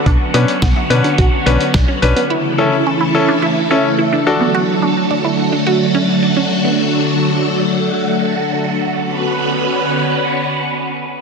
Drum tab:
HH |x-xxx-xxx-xxx-xx|----------------|----------------|----------------|
SD |----o-------o---|----------------|----------------|----------------|
BD |o---o---o---o---|----------------|----------------|----------------|

HH |----------------|
SD |----------------|
BD |----------------|